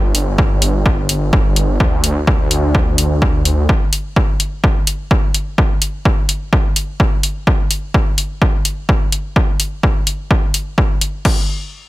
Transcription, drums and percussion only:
0.15 open hi-hat
0.38 kick
0.62 open hi-hat
0.86 kick
1.09 open hi-hat
1.33 kick
1.56 open hi-hat
1.80 kick
2.04 open hi-hat
2.27 kick
2.51 open hi-hat
2.75 kick
2.98 open hi-hat
3.22 kick
3.45 open hi-hat
3.69 kick
3.93 open hi-hat
4.16 kick
4.40 open hi-hat
4.64 kick
4.87 open hi-hat
5.11 kick
5.34 open hi-hat
5.58 kick
5.82 open hi-hat
6.05 kick
6.29 open hi-hat
6.53 kick
6.76 open hi-hat
7.00 kick
7.23 open hi-hat
7.47 kick
7.71 open hi-hat
7.94 kick
8.18 open hi-hat
8.42 kick
8.65 open hi-hat
8.89 kick
9.12 open hi-hat
9.36 kick
9.60 open hi-hat
9.83 kick
10.07 open hi-hat
10.31 kick
10.54 open hi-hat
10.78 kick
11.01 open hi-hat
11.25 kick, crash

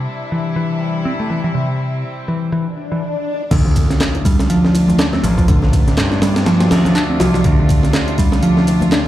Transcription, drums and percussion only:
3.51 kick, closed hi-hat, crash
3.65 low conga
3.76 kick, closed hi-hat, ride
3.90 snare, closed hi-hat
4.01 snare, clap, closed hi-hat
4.15 closed hi-hat, high bongo
4.25 kick, closed hi-hat, ride
4.39 snare, closed hi-hat
4.50 closed hi-hat
4.64 snare
4.74 closed hi-hat, ride, high bongo
4.88 closed hi-hat, high conga, low conga
4.99 snare, clap, closed hi-hat
5.13 snare, high conga
5.23 closed hi-hat, ride, high conga, low conga
5.38 kick, closed hi-hat, high bongo
5.48 kick, closed hi-hat, high conga
5.62 snare, low conga
5.73 kick, closed hi-hat, ride
5.87 snare, closed hi-hat
5.97 snare, clap, closed hi-hat
6.11 snare, high bongo, high conga
6.22 snare, closed hi-hat, ride
6.36 snare, closed hi-hat
6.46 snare, closed hi-hat
6.60 snare, closed hi-hat
6.71 snare, closed hi-hat, ride
6.85 snare, closed hi-hat, low conga
6.95 clap, closed hi-hat
7.20 snare, closed hi-hat, ride, high bongo, low conga
7.34 snare, closed hi-hat
7.44 kick, closed hi-hat
7.46 closed hi-hat
7.59 low conga
7.69 kick, closed hi-hat, ride
7.83 snare, closed hi-hat
7.93 snare, clap, closed hi-hat
8.08 closed hi-hat, high bongo
8.18 kick, closed hi-hat, ride
8.32 snare, closed hi-hat
8.43 closed hi-hat
8.57 snare
8.67 closed hi-hat, ride, high bongo
8.81 closed hi-hat, high conga, low conga
8.92 snare, clap, closed hi-hat

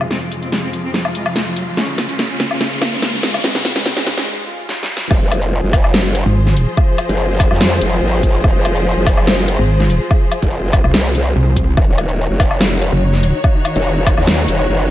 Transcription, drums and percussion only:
0.01 low woodblock
0.11 snare
0.32 closed hi-hat
0.43 closed hi-hat
0.52 snare
0.73 closed hi-hat
0.94 snare
1.05 low woodblock
1.15 closed hi-hat
1.26 low woodblock
1.36 snare
1.57 closed hi-hat
1.77 snare
1.98 snare, closed hi-hat
2.09 closed hi-hat
2.19 snare
2.40 snare, closed hi-hat
2.51 low woodblock
2.61 snare
2.82 snare, closed hi-hat, low woodblock
3.02 snare
3.23 snare, closed hi-hat
3.34 low woodblock
3.44 snare
3.55 snare
3.65 snare, closed hi-hat
3.76 snare, closed hi-hat
3.86 snare
3.97 snare
4.07 snare, closed hi-hat
4.18 snare
4.69 snare
4.83 snare
4.97 snare
5.11 kick, crash, low woodblock
5.32 closed hi-hat, low woodblock
5.43 closed hi-hat
5.73 kick, open hi-hat, low woodblock
5.84 low woodblock
5.94 snare
6.15 closed hi-hat
6.47 snare
6.57 closed hi-hat
6.77 kick, low woodblock
6.98 closed hi-hat, low woodblock
7.09 closed hi-hat
7.40 kick, open hi-hat, low woodblock
7.51 low woodblock
7.61 snare
7.82 closed hi-hat
8.23 kick, closed hi-hat
8.44 kick, low woodblock
8.65 closed hi-hat, low woodblock
8.76 closed hi-hat
9.07 kick, open hi-hat, low woodblock
9.18 low woodblock
9.27 snare
9.48 closed hi-hat
9.80 snare
9.90 closed hi-hat
10.11 kick, low woodblock
10.32 closed hi-hat, low woodblock
10.42 kick, closed hi-hat
10.73 kick, open hi-hat, low woodblock
10.84 low woodblock
10.94 snare
11.15 closed hi-hat
11.57 kick, closed hi-hat
11.77 kick, low woodblock
11.98 closed hi-hat, low woodblock
12.09 closed hi-hat
12.40 kick, open hi-hat, low woodblock
12.51 low woodblock
12.61 snare
12.82 closed hi-hat
13.13 snare
13.23 closed hi-hat
13.44 kick, low woodblock
13.65 closed hi-hat, low woodblock
13.76 closed hi-hat
14.07 kick, open hi-hat, low woodblock
14.18 low woodblock
14.27 snare
14.48 closed hi-hat

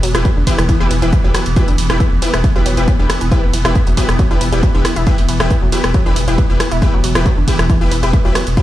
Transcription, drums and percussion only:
0.03 open hi-hat, ride
0.15 cross-stick, closed hi-hat
0.25 kick, closed hi-hat
0.47 kick, open hi-hat, ride
0.58 cross-stick, closed hi-hat
0.69 kick, closed hi-hat
0.91 open hi-hat, ride
1.02 closed hi-hat
1.13 kick, closed hi-hat
1.35 cross-stick, open hi-hat, ride
1.46 closed hi-hat
1.56 kick, closed hi-hat
1.68 open hi-hat
1.78 open hi-hat, ride
1.90 cross-stick, closed hi-hat
2.00 kick, closed hi-hat
2.22 open hi-hat, ride
2.34 cross-stick, closed hi-hat
2.44 kick, closed hi-hat
2.66 open hi-hat, ride
2.77 closed hi-hat
2.88 kick, closed hi-hat
3.10 cross-stick, open hi-hat, ride
3.21 closed hi-hat
3.32 kick, closed hi-hat
3.53 open hi-hat, ride
3.65 cross-stick, closed hi-hat
3.75 kick, closed hi-hat
3.87 open hi-hat
3.97 kick, open hi-hat, ride
4.09 cross-stick, closed hi-hat
4.19 kick, closed hi-hat
4.41 open hi-hat, ride
4.53 closed hi-hat
4.63 kick, closed hi-hat
4.85 cross-stick, open hi-hat, ride
4.96 closed hi-hat
5.07 kick, closed hi-hat
5.18 open hi-hat
5.29 open hi-hat, ride
5.40 cross-stick, closed hi-hat
5.50 kick, closed hi-hat
5.72 open hi-hat, ride
5.84 cross-stick, closed hi-hat
5.94 kick, closed hi-hat
6.16 open hi-hat, ride
6.28 closed hi-hat
6.38 kick, closed hi-hat
6.60 cross-stick, open hi-hat, ride
6.72 closed hi-hat
6.82 kick, closed hi-hat
7.04 open hi-hat, ride
7.15 cross-stick, closed hi-hat
7.26 kick, closed hi-hat
7.48 kick, open hi-hat, ride
7.59 cross-stick, closed hi-hat
7.70 kick, closed hi-hat
7.91 open hi-hat, ride
8.03 closed hi-hat
8.13 kick, closed hi-hat
8.35 cross-stick, open hi-hat, ride
8.47 closed hi-hat
8.57 kick, closed hi-hat

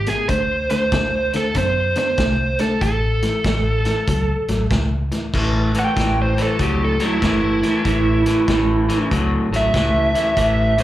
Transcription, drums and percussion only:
0.06 snare, closed hi-hat
0.29 kick, closed hi-hat
0.70 snare, closed hi-hat
0.92 kick, snare, closed hi-hat
1.33 snare, closed hi-hat
1.54 kick, snare, closed hi-hat
1.95 snare, closed hi-hat
2.18 kick, snare, closed hi-hat
2.59 snare, closed hi-hat
2.81 kick, closed hi-hat
3.23 snare, closed hi-hat
3.44 kick, snare, closed hi-hat
3.85 snare, closed hi-hat
4.07 kick, closed hi-hat
4.48 snare, closed hi-hat
4.70 kick, snare, closed hi-hat
5.12 snare, closed hi-hat
5.34 kick, snare, crash
5.74 snare, closed hi-hat
5.97 kick, snare, closed hi-hat
6.38 snare, closed hi-hat
6.59 kick, closed hi-hat
7.00 snare, closed hi-hat
7.22 kick, snare, closed hi-hat
7.63 snare, closed hi-hat
7.85 kick, snare, closed hi-hat
8.26 snare, closed hi-hat
8.48 kick, snare, closed hi-hat
8.90 snare, closed hi-hat
9.11 kick, closed hi-hat
9.54 snare, closed hi-hat
9.74 kick, snare, closed hi-hat
10.15 snare, closed hi-hat
10.37 kick, snare, closed hi-hat
10.78 snare, closed hi-hat

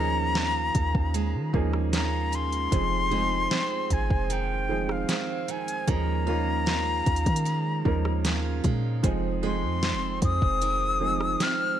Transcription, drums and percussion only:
0.35 snare
0.75 kick, closed hi-hat
0.95 kick
1.14 closed hi-hat
1.54 kick
1.73 cross-stick
1.93 snare, closed hi-hat
2.33 closed hi-hat
2.52 closed hi-hat
2.72 kick, closed hi-hat
3.51 snare
3.90 kick, closed hi-hat
4.10 kick
4.30 closed hi-hat
4.89 cross-stick
5.09 snare, closed hi-hat
5.48 closed hi-hat
5.68 closed hi-hat
5.88 kick, closed hi-hat
6.67 snare
7.06 kick, closed hi-hat
7.16 closed hi-hat
7.26 kick, closed hi-hat
7.36 closed hi-hat
7.46 closed hi-hat
7.85 kick
8.05 cross-stick
8.25 snare, closed hi-hat
8.64 kick, closed hi-hat
9.04 kick, closed hi-hat
9.83 snare
10.22 kick, closed hi-hat
10.42 kick
10.62 closed hi-hat
11.21 cross-stick
11.40 snare, closed hi-hat

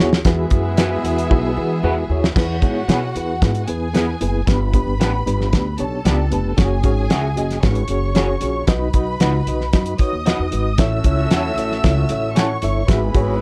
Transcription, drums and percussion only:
0.13 snare
0.25 kick, snare, closed hi-hat
0.50 kick, closed hi-hat
0.77 snare, closed hi-hat
1.05 closed hi-hat
1.18 closed hi-hat
1.31 kick
2.24 snare
2.36 kick, snare, crash
2.62 kick, closed hi-hat
2.89 snare, closed hi-hat
3.16 closed hi-hat
3.42 kick, snare, closed hi-hat
3.55 closed hi-hat
3.68 closed hi-hat
3.94 snare, closed hi-hat
4.21 closed hi-hat
4.47 kick, snare, closed hi-hat
4.73 kick, closed hi-hat
5.01 snare, closed hi-hat
5.27 closed hi-hat
5.41 snare
5.53 kick, snare, closed hi-hat
5.78 closed hi-hat
6.05 snare, closed hi-hat
6.32 closed hi-hat
6.58 kick, snare, closed hi-hat
6.83 kick, closed hi-hat
7.10 snare, closed hi-hat
7.37 closed hi-hat
7.51 snare, closed hi-hat
7.63 kick, snare, closed hi-hat
7.75 closed hi-hat
7.88 closed hi-hat
8.15 snare, closed hi-hat
8.41 closed hi-hat
8.67 kick, snare, closed hi-hat
8.94 kick, closed hi-hat
9.20 snare, closed hi-hat
9.47 closed hi-hat
9.61 snare
9.73 kick, snare, closed hi-hat
9.86 closed hi-hat
9.98 kick, closed hi-hat
10.26 snare, closed hi-hat
10.52 closed hi-hat
10.78 kick, snare, closed hi-hat
11.04 kick, closed hi-hat
11.31 snare, closed hi-hat
11.58 closed hi-hat
11.72 snare
11.84 kick, snare, closed hi-hat
12.09 closed hi-hat
12.36 snare, closed hi-hat
12.62 closed hi-hat
12.88 kick, snare, closed hi-hat
13.14 kick, closed hi-hat

